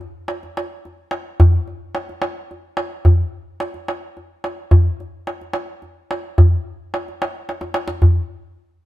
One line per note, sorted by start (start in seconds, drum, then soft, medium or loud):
0.01 tombak ka soft
0.28 tombak tek medium
0.43 tombak ka soft
0.57 tombak tek medium
0.85 tombak ka soft
1.11 tombak tek medium
1.40 tombak dum loud
1.67 tombak ka soft
1.95 tombak tek medium
2.09 tombak ka soft
2.22 tombak tek medium
2.51 tombak ka soft
2.77 tombak tek medium
3.05 tombak dum medium
3.60 tombak tek medium
3.74 tombak ka soft
3.88 tombak tek medium
4.17 tombak ka soft
4.44 tombak tek medium
4.71 tombak dum medium
5.00 tombak ka soft
5.27 tombak tek medium
5.41 tombak ka soft
5.53 tombak tek medium
5.82 tombak ka soft
6.11 tombak tek medium
6.38 tombak dum medium
6.94 tombak tek medium
7.08 tombak ka soft
7.22 tombak tek medium
7.49 tombak tek medium
7.61 tombak ka medium
7.74 tombak tek medium
7.88 tombak ka medium
8.02 tombak dum medium